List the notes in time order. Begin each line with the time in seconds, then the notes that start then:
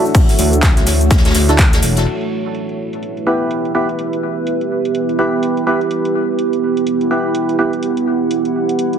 Already playing: A3 D4 E4 F#4 A4 C#5 E5 F#5
0.05 shaker
0.14 kick, closed hi-hat, open hi-hat, shaker
0.29 snare, open hi-hat, shaker
0.39 D2, closed hi-hat, open hi-hat, shaker
0.53 closed hi-hat, shaker
0.63 kick, snare, clap, closed hi-hat, shaker
0.77 snare, closed hi-hat, shaker
0.87 D2, snare, closed hi-hat, open hi-hat, shaker
1.01 closed hi-hat, shaker
1.10 D2, kick, snare, closed hi-hat, shaker
1.18 snare, closed hi-hat
1.25 snare, closed hi-hat, shaker
1.30 snare, closed hi-hat
1.35 D2, snare, closed hi-hat, open hi-hat, shaker
1.49 D4 E4 F#4 A4, snare, closed hi-hat, shaker
1.59 D2, kick, snare, clap, closed hi-hat, shaker
1.73 snare, closed hi-hat, shaker
1.83 E1, snare, open hi-hat, shaker
1.96 snare, closed hi-hat, shaker
2.07 B3 E4 G4 E5, closed hi-hat, crash
2.21 closed hi-hat
2.55 closed hi-hat
2.69 closed hi-hat
2.82 B4
2.93 closed hi-hat
3.03 closed hi-hat
3.17 closed hi-hat
3.27 B3 E4 G4 B4
3.51 closed hi-hat
3.65 G4, closed hi-hat
3.75 B3 E4 G4 B4
3.89 closed hi-hat
3.99 closed hi-hat
4.13 closed hi-hat
4.47 closed hi-hat
4.61 closed hi-hat
4.85 closed hi-hat
4.95 closed hi-hat
5.09 closed hi-hat
5.19 B3 E4 G4 B4
5.43 closed hi-hat
5.57 closed hi-hat
5.67 B3 E4 G4 B4
5.81 closed hi-hat
5.91 F#5, closed hi-hat
6.05 closed hi-hat
6.39 closed hi-hat
6.53 closed hi-hat
6.77 closed hi-hat
6.87 closed hi-hat
7.01 closed hi-hat
7.11 B3 E4 G4 B4
7.35 closed hi-hat
7.49 closed hi-hat
7.59 B3 E4 G4 B4
7.73 closed hi-hat
7.83 closed hi-hat
7.97 closed hi-hat
8.31 closed hi-hat
8.45 closed hi-hat
8.69 closed hi-hat
8.79 closed hi-hat
8.93 closed hi-hat